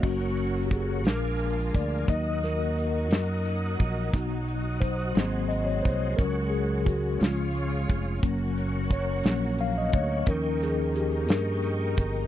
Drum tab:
CC |x-----|------|------|------|
HH |-xxxxx|xxxxxx|xxxxxx|xxxxxx|
SD |---o--|-o-o--|---o--|---o--|
BD |o-o--o|o----o|o-o--o|o-o--o|

CC |------|------|
HH |xxxxxx|xxxxxx|
SD |---o--|-o-o--|
BD |o-o--o|o----o|